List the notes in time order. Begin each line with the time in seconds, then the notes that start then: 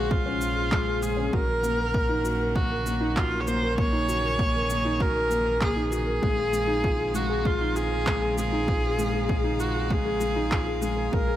Already playing: A#1 C#3 G#3 C#4 F4 F#4 G#4 C5 F5
0.11 G#3 F4, kick
0.26 C#4
0.41 F4, shaker
0.56 G#4
0.71 G#3, kick, clap
0.87 G#4
1.02 G#3 G#4, shaker
1.17 C#4
1.32 A#1 D#3 F#3 A#3 C#4 F#4 A#4, kick
1.48 A#4
1.63 A#3, shaker
1.78 A#4
1.93 A#3, kick
2.09 D#4
2.24 F#4, shaker
2.40 A#4
2.55 A#3 F#4, kick
2.71 A#4
2.86 A#3, shaker
3.01 D#4
3.10 F#4
3.16 F4 F#4, kick, clap
3.31 A#4
3.41 C#5
3.47 A#3 C5, shaker
3.62 A#4
3.78 A#3 G#4 C#5, kick
3.93 D#4
4.08 F#4, shaker
4.23 A#4
4.39 A#3, kick
4.55 A#4
4.70 A#3, shaker
4.85 D#4
5.00 F#4 A#4, kick
5.15 A#4
5.30 A#3, shaker
5.45 A#4
5.61 A#3 G#4, kick, clap
5.76 D#4
5.91 F#4 G#4, shaker
6.06 A#4
6.22 A#1 G#3 C4 F5, kick
6.37 G#4
6.52 G#3, shaker
6.67 D#4
6.83 F4, kick
6.99 G#4
7.14 G#3 F#4, shaker
7.29 G#4
7.45 G#3 F4, kick
7.60 D#4
7.76 F4 G#4, shaker
7.91 G#4
8.06 G#3, kick, clap
8.22 G#4
8.37 G#3 G#4, shaker
8.52 D#4
8.67 F4, kick
8.83 G#4
8.98 G#3, shaker
9.13 G#4
9.28 G#3, kick
9.44 D#4
9.60 F4 F#4, shaker
9.74 G#4
9.90 G#3 G#4, kick
10.05 G#4
10.20 G#3, shaker
10.36 D#4
10.51 F4, kick, clap
10.66 G#4
10.81 G#3 G#4, shaker
10.97 G#4
11.12 A#1 C#3 G#3 A#3 A#4, kick
11.27 G#4